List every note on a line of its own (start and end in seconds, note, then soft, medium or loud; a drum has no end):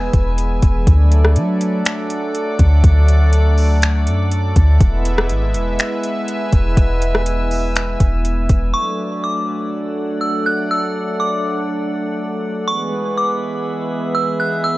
0.00 0.83 E3 medium
0.00 0.83 G#3 medium
0.00 0.83 B3 medium
0.00 0.83 G#4 medium
0.00 0.83 B4 medium
0.00 0.83 G#5 medium
0.00 0.83 E6 medium
0.13 0.61 E1 loud
0.13 kick loud
0.13 closed hi-hat medium
0.38 closed hi-hat medium
0.62 0.86 E1 loud
0.62 kick loud
0.62 closed hi-hat medium
0.87 1.38 D2 loud
0.87 4.77 F#3 medium
0.87 4.77 A3 medium
0.87 4.77 D4 medium
0.87 4.77 A4 medium
0.87 4.77 D5 medium
0.87 4.77 F#5 medium
0.87 4.77 D6 medium
0.87 kick loud
0.87 closed hi-hat medium
1.12 closed hi-hat medium
1.25 cross-stick medium
1.36 1.83 F#3 loud
1.36 closed hi-hat medium
1.61 closed hi-hat medium
1.85 finger snap loud
1.85 closed hi-hat medium
2.10 closed hi-hat medium
2.35 closed hi-hat medium
2.59 2.83 D2 loud
2.59 kick loud
2.59 closed hi-hat medium
2.84 4.08 D2 loud
2.84 kick loud
2.84 closed hi-hat medium
3.08 closed hi-hat medium
3.33 closed hi-hat medium
3.58 open hi-hat medium
3.82 finger snap loud
3.82 closed hi-hat medium
4.07 4.54 F#2 loud
4.07 closed hi-hat medium
4.31 closed hi-hat medium
4.56 4.80 D2 loud
4.56 kick loud
4.56 closed hi-hat medium
4.80 5.31 E1 loud
4.80 8.70 G#3 medium
4.80 8.70 B3 medium
4.80 8.70 E4 medium
4.80 8.70 B4 medium
4.80 8.70 E5 medium
4.80 8.70 G#5 medium
4.80 8.70 E6 medium
4.80 kick loud
4.80 closed hi-hat medium
5.05 closed hi-hat medium
5.18 cross-stick loud
5.29 5.56 G#1 loud
5.29 closed hi-hat medium
5.54 5.78 E1 loud
5.54 closed hi-hat medium
5.79 finger snap loud
5.79 closed hi-hat medium
6.03 closed hi-hat medium
6.28 closed hi-hat medium
6.53 6.76 E1 loud
6.53 kick medium
6.53 closed hi-hat medium
6.77 7.96 E1 loud
6.77 kick loud
6.77 closed hi-hat medium
7.02 closed hi-hat medium
7.15 cross-stick medium
7.26 closed hi-hat medium
7.51 open hi-hat medium
7.76 finger snap loud
7.76 closed hi-hat medium
8.00 8.48 E1 loud
8.00 kick loud
8.00 closed hi-hat medium
8.25 closed hi-hat medium
8.49 8.73 E1 loud
8.49 kick medium
8.49 closed hi-hat medium
8.74 12.64 F#3 medium
8.74 12.64 A3 medium
8.74 12.64 D4 medium
8.74 12.64 A4 medium
8.74 12.64 D5 medium
8.74 12.64 F#5 medium
8.74 9.20 C#6 loud
9.24 10.18 D6 medium
10.21 10.45 E6 medium
10.46 10.69 F#6 medium
10.71 11.17 E6 loud
11.20 12.63 D6 medium
12.67 14.78 E3 medium
12.67 14.78 G#3 medium
12.67 14.78 B3 medium
12.67 14.78 G#4 medium
12.67 14.78 B4 medium
12.67 14.78 E5 medium
12.67 14.62 B5 medium
12.67 13.14 C#6 loud
13.17 14.11 D6 medium
14.15 14.38 E6 medium
14.40 14.63 F#6 medium
14.64 14.78 E6 loud